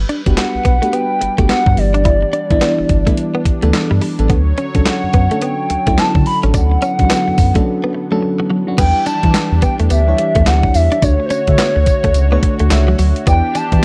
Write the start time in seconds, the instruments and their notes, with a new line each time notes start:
Already playing: analog synth pad G3 B4
0.09 clean electric guitar D4, closed hi-hat
0.26 analog synth bass F#1, fm electric piano B3 D4 F#4 G4, muted clean electric guitar stroke, kick, closed hi-hat
0.37 soft synth lead F#5, muted clean electric guitar stroke, snare, clap, closed hi-hat
0.55 analog synth bass B1
0.65 analog synth bass B1, clean electric guitar B3, kick, closed hi-hat
0.82 clean electric guitar A3, fm electric piano B3 D4 F#4 G4, closed hi-hat
0.93 clean electric guitar B3, soft synth lead G5, closed hi-hat
1.21 analog synth bass G1, muted clean electric guitar stroke, closed hi-hat
1.38 analog synth bass G1, clean electric guitar A3, fm electric piano B3 D4 F#4 G4, kick, closed hi-hat
1.49 clean electric guitar B3, soft synth lead F#5, snare, clap, closed hi-hat
1.66 analog synth bass G2, muted clean electric guitar stroke, kick
1.77 analog synth bass G1, fm electric piano E3 B3 D4 G4, analog synth pad D4, soft synth lead D5, open hi-hat
1.94 clean electric guitar D4, closed hi-hat
2.05 clean electric guitar E4, kick, closed hi-hat
2.22 muted clean electric guitar stroke
2.33 clean electric guitar D4, closed hi-hat
2.50 analog synth bass A1, fm electric piano E3 B3 D4 E4, kick, closed hi-hat
2.61 clean electric guitar B3, snare, clap, closed hi-hat
2.79 analog synth bass G1, muted clean electric guitar stroke
2.89 analog synth bass G1, kick, closed hi-hat
3.06 fm electric piano E3 B3 D4 E4, clean electric guitar A3, kick, closed hi-hat
3.17 closed hi-hat
3.35 clean electric guitar B3
3.45 analog synth bass D2, muted clean electric guitar stroke, kick, closed hi-hat
3.62 analog synth bass D2, fm electric piano E3 B3 D4 A4, clean electric guitar A3, closed hi-hat
3.73 muted clean electric guitar stroke, snare, clap, closed hi-hat
3.91 analog synth bass G2, clean electric guitar G3
4.01 clean electric guitar G3, open hi-hat
4.18 analog synth bass A1, fm electric piano E3 B3 D4 A4, closed hi-hat
4.29 analog synth bass D2, analog synth pad D3 F#3 C#5, clean electric guitar B3, kick, closed hi-hat
4.58 clean electric guitar C#4, closed hi-hat
4.75 analog synth bass C#2, fm electric piano F#3 C#4 D4 A4, muted clean electric guitar stroke, kick, closed hi-hat
4.86 soft synth lead F#5, muted clean electric guitar stroke, snare, clap, closed hi-hat
5.04 analog synth bass F#2
5.13 analog synth bass F#2, clean electric guitar B3, kick, closed hi-hat
5.31 fm electric piano F#3 C#4 D4 A4, clean electric guitar A3, closed hi-hat
5.42 clean electric guitar B3, soft synth lead G5, closed hi-hat
5.70 analog synth bass D2, muted clean electric guitar stroke, closed hi-hat
5.87 analog synth bass D2, fm electric piano F#3 C#4 D4 E4, clean electric guitar A3, kick, closed hi-hat
5.98 clean electric guitar B3, soft synth lead A5, snare, clap, closed hi-hat
6.15 analog synth bass D3, muted clean electric guitar stroke, kick
6.26 soft synth lead B5, open hi-hat
6.43 analog synth bass A1, fm electric piano F#3 C#4 D4 A4, clean electric guitar C#4, closed hi-hat
6.54 analog synth bass D2, analog synth pad B3, clean electric guitar D4, soft synth lead F#5, kick, closed hi-hat, tambourine
6.71 muted clean electric guitar stroke
6.82 clean electric guitar C#4, closed hi-hat, tambourine
6.99 analog synth bass C#2, fm electric piano F#3 C#4 D4 F#4, kick, closed hi-hat
7.10 clean electric guitar B3, snare, clap, closed hi-hat, tambourine
7.28 analog synth bass F#2, muted clean electric guitar stroke
7.38 analog synth bass F#2, kick, open hi-hat, tambourine
7.55 fm electric piano F#3 C#4 D4 A4, clean electric guitar A3, kick, closed hi-hat
7.84 clean electric guitar B3
7.95 muted clean electric guitar stroke
8.11 fm electric piano F#3 C#4 D4 A4, clean electric guitar A3
8.23 muted clean electric guitar stroke
8.40 clean electric guitar F#3
8.50 clean electric guitar F#3
8.67 fm electric piano F#3 C#4 D4 F#4
8.78 analog synth bass E2, analog synth pad E3 D4 G4, fm electric piano G3 D4 E4 B4, clean electric guitar B3, soft synth lead G5, kick, closed hi-hat, crash, tambourine
9.06 analog synth bass E3, clean electric guitar D4, soft synth lead A5, closed hi-hat, tambourine
9.23 analog synth bass E3, fm electric piano G3 D4 E4 B4, muted clean electric guitar stroke, kick, closed hi-hat
9.34 muted clean electric guitar stroke, snare, clap, closed hi-hat, tambourine
9.52 analog synth bass E2
9.62 clean electric guitar B3, soft synth lead G5, kick, closed hi-hat, tambourine
9.79 analog synth bass E2, clean electric guitar A3, closed hi-hat
9.90 analog synth bass D2, clean electric guitar B3, soft synth lead E5, closed hi-hat, tambourine
10.07 fm electric piano G3 D4 E4 C#5
10.18 muted clean electric guitar stroke, closed hi-hat
10.35 analog synth bass E2, clean electric guitar A3, kick, closed hi-hat
10.46 analog synth bass D2, fm electric piano G3 D4 E4 G4, clean electric guitar B3, soft synth lead F#5, snare, clap, closed hi-hat, tambourine
10.63 muted clean electric guitar stroke, kick
10.74 analog synth bass E2, soft synth lead E5, open hi-hat, tambourine
10.92 clean electric guitar D4, closed hi-hat
11.02 analog synth bass D2, analog synth pad D3 F#4 C#5, fm electric piano A3 D4 F#4 C#5, clean electric guitar D4, soft synth lead C#5, kick, closed hi-hat, tambourine
11.20 muted clean electric guitar stroke
11.26 soft synth lead C5
11.30 analog synth bass D3, clean electric guitar C#4, soft synth lead C#5, closed hi-hat, tambourine
11.47 analog synth bass D3, fm electric piano A3 D4 F#4 E5, kick, closed hi-hat
11.58 clean electric guitar B3, snare, clap, closed hi-hat, tambourine
11.76 analog synth bass D2, muted clean electric guitar stroke
11.86 kick, closed hi-hat, tambourine
12.04 analog synth bass D2, clean electric guitar A3, kick, closed hi-hat
12.14 analog synth bass C#2, closed hi-hat, tambourine
12.32 fm electric piano A3 D4 F#4 C#5, clean electric guitar B3
12.43 muted clean electric guitar stroke, kick, closed hi-hat
12.59 analog synth bass D2, clean electric guitar A3, closed hi-hat
12.70 analog synth bass C#2, fm electric piano A3 D4 F#4 E5, muted clean electric guitar stroke, snare, clap, closed hi-hat, tambourine
12.88 clean electric guitar F#3
12.99 analog synth bass D2, clean electric guitar F#3, open hi-hat, tambourine
13.16 closed hi-hat
13.27 analog synth bass E2, analog synth pad E3 D4 G4, fm electric piano B3 E4 G4 D5, clean electric guitar B3, soft synth lead G5, kick, closed hi-hat, tambourine
13.55 analog synth bass E3, clean electric guitar D4, soft synth lead A5, closed hi-hat, tambourine
13.72 analog synth bass E3, fm electric piano B3 E4 F#4 D5, muted clean electric guitar stroke, kick, closed hi-hat
13.79 fm electric piano G4